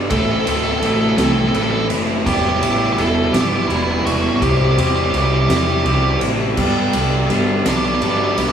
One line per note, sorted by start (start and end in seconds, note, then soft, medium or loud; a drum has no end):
0.00 0.11 G3 medium
0.00 0.12 B3 medium
0.00 0.11 D4 medium
0.00 1.91 E4 medium
0.00 0.14 B4 medium
0.00 0.11 D5 medium
0.10 0.44 A1 loud
0.10 0.83 A2 medium
0.10 0.82 E3 loud
0.10 0.47 A3 loud
0.10 0.46 C4 loud
0.10 0.46 E4 loud
0.10 0.17 A4 loud
0.10 0.82 C5 loud
0.10 kick loud
0.10 ride loud
0.17 0.25 A4 medium
0.25 0.31 A4 loud
0.32 0.40 A4 medium
0.40 0.48 A4 loud
0.46 0.80 D2 medium
0.46 0.82 A3 medium
0.46 0.82 C4 medium
0.46 0.84 E4 medium
0.46 0.56 A4 medium
0.46 ride loud
0.56 0.64 A4 loud
0.64 0.72 A4 medium
0.72 0.78 A4 medium
0.79 1.15 A1 loud
0.79 1.54 E3 medium
0.79 0.86 A4 medium
0.79 1.54 A4 medium
0.79 ride medium
0.83 1.19 A3 loud
0.83 1.18 C4 medium
0.83 1.18 E4 loud
0.83 0.94 A4 loud
0.94 1.00 A4 medium
1.01 1.08 A4 medium
1.09 1.17 A4 medium
1.17 1.51 C2 loud
1.17 1.54 A3 medium
1.17 1.55 C4 medium
1.17 1.56 E4 medium
1.17 1.24 A4 loud
1.17 snare loud
1.17 ride loud
1.21 1.92 A2 medium
1.21 1.53 E3 medium
1.21 1.32 A4 medium
1.32 1.39 A4 medium
1.39 1.47 A4 medium
1.48 1.55 A4 loud
1.53 1.87 A1 medium
1.53 2.25 E3 medium
1.53 1.91 A3 medium
1.53 1.90 C4 medium
1.53 1.90 E4 loud
1.53 1.62 A4 medium
1.53 2.26 B4 medium
1.53 2.26 D5 medium
1.53 ride medium
1.62 1.70 A4 medium
1.71 1.78 A4 medium
1.78 1.86 A4 medium
1.90 2.23 F#1 medium
1.90 2.25 A3 medium
1.90 2.24 C4 medium
1.90 2.28 E4 medium
1.90 ride medium
2.26 2.59 E1 loud
2.26 2.98 E3 loud
2.26 2.64 G3 loud
2.26 2.62 B3 loud
2.26 2.61 E4 loud
2.26 2.33 G4 loud
2.26 2.98 G5 loud
2.26 kick loud
2.26 crash loud
2.33 2.41 G4 medium
2.42 2.48 G4 loud
2.49 2.56 G4 medium
2.57 2.63 G4 loud
2.62 2.95 A1 medium
2.62 2.99 G3 medium
2.62 2.99 B3 medium
2.62 3.00 E4 medium
2.62 2.70 G4 medium
2.62 ride medium
2.72 2.78 G4 loud
2.78 2.86 G4 medium
2.86 2.92 G4 loud
2.93 3.00 G4 medium
2.98 3.31 E1 medium
2.98 3.70 E3 medium
2.98 3.36 G3 medium
2.98 3.35 B3 loud
2.98 3.34 E4 medium
2.98 3.06 A4 loud
2.98 3.70 E5 medium
2.98 ride medium
3.06 3.14 A4 medium
3.15 3.23 A4 loud
3.25 3.33 A4 medium
3.33 3.67 G1 loud
3.33 3.69 E3 medium
3.33 3.71 G3 medium
3.33 3.70 B3 medium
3.33 3.72 E4 medium
3.33 3.41 G4 loud
3.33 snare loud
3.33 ride loud
3.41 3.48 G4 medium
3.48 3.55 G4 medium
3.56 3.62 G4 medium
3.63 3.67 G4 medium
3.68 4.03 E1 medium
3.68 4.42 E3 medium
3.68 4.09 G3 loud
3.68 4.07 B3 medium
3.68 3.75 E4 medium
3.68 4.42 D5 medium
3.68 ride medium
3.72 4.07 E4 medium
3.72 3.82 E4 medium
3.83 3.90 E4 medium
3.91 3.98 E4 medium
3.99 4.06 E4 medium
4.05 4.42 E1 medium
4.05 4.43 G3 medium
4.05 4.41 B3 medium
4.05 4.44 D4 medium
4.05 4.44 E4 medium
4.05 4.12 F#4 loud
4.05 ride medium
4.12 4.19 F#4 medium
4.22 4.28 F#4 loud
4.29 4.36 F#4 medium
4.36 4.42 F#4 medium
4.41 4.75 C2 loud
4.41 5.13 C3 medium
4.41 4.80 G3 loud
4.41 4.78 C4 loud
4.41 4.78 E4 loud
4.41 4.49 G4 medium
4.41 5.13 C5 loud
4.41 kick loud
4.41 ride loud
4.50 4.57 G4 medium
4.57 4.65 G4 medium
4.65 4.71 G4 medium
4.71 4.79 G4 medium
4.77 5.11 E2 medium
4.77 5.14 G3 medium
4.77 5.14 C4 medium
4.77 5.16 E4 medium
4.77 4.87 G4 medium
4.77 ride medium
4.88 4.95 G4 medium
4.96 5.03 G4 medium
5.04 5.11 G4 medium
5.11 5.47 C2 loud
5.11 5.84 C3 medium
5.11 6.57 E3 medium
5.11 5.51 G3 medium
5.11 5.18 G4 medium
5.11 5.85 A4 medium
5.11 ride medium
5.16 5.50 C4 medium
5.16 5.49 E4 medium
5.16 5.25 G4 medium
5.25 5.33 G4 medium
5.34 5.41 G4 medium
5.41 5.48 G4 medium
5.48 5.82 E2 loud
5.48 5.85 G3 medium
5.48 5.85 C4 medium
5.48 5.87 E4 medium
5.48 5.56 G4 medium
5.48 snare loud
5.48 ride loud
5.53 5.84 C3 medium
5.53 5.63 G4 medium
5.63 5.71 G4 medium
5.72 5.79 G4 medium
5.80 5.86 G4 medium
5.85 6.18 C2 medium
5.85 6.55 C3 medium
5.85 6.23 G3 loud
5.85 6.22 C4 medium
5.85 6.21 E4 loud
5.85 5.94 G4 medium
5.85 6.58 G4 medium
5.85 6.57 D5 medium
5.85 ride medium
5.94 6.02 G4 medium
6.02 6.10 G4 medium
6.10 6.18 G4 medium
6.21 6.54 A1 medium
6.21 6.56 G3 medium
6.21 6.56 C4 medium
6.21 6.57 D4 medium
6.21 6.59 E4 medium
6.21 ride medium
6.57 6.91 G1 medium
6.57 7.29 G2 medium
6.57 7.28 D3 medium
6.57 6.94 G3 loud
6.57 6.94 B3 medium
6.57 6.92 D4 loud
6.57 8.52 G4 medium
6.57 8.52 D5 medium
6.57 8.52 E5 medium
6.57 7.29 G5 medium
6.57 8.52 B5 medium
6.57 kick loud
6.57 crash loud
6.93 7.27 C2 loud
6.93 7.28 G3 medium
6.93 7.30 B3 medium
6.93 7.30 D4 medium
6.93 ride loud
7.29 7.63 G1 loud
7.29 8.00 D3 medium
7.29 7.66 G3 medium
7.29 7.66 B3 medium
7.29 7.64 D4 medium
7.29 8.02 E5 medium
7.29 ride medium
7.65 7.99 B1 loud
7.65 8.38 G2 medium
7.65 7.99 D3 medium
7.65 8.01 G3 medium
7.65 8.02 B3 medium
7.65 8.02 D4 medium
7.65 7.76 G4 loud
7.65 snare loud
7.65 ride loud
7.77 7.85 G4 medium
7.85 7.94 G4 loud
7.95 8.03 G4 medium
8.01 8.35 G1 medium
8.01 8.52 D3 medium
8.01 8.38 G3 medium
8.01 8.38 B3 medium
8.01 8.36 D4 medium
8.01 8.11 G4 medium
8.01 8.52 B4 medium
8.01 8.52 D5 medium
8.01 ride medium
8.11 8.18 G4 medium
8.18 8.24 G4 medium
8.24 8.31 G4 medium
8.32 8.39 G4 medium
8.37 8.52 B1 medium
8.37 8.52 G3 medium
8.37 8.52 B3 medium
8.37 8.52 D4 medium
8.37 8.52 E4 medium
8.37 8.48 G4 medium
8.37 ride medium
8.49 8.52 G4 medium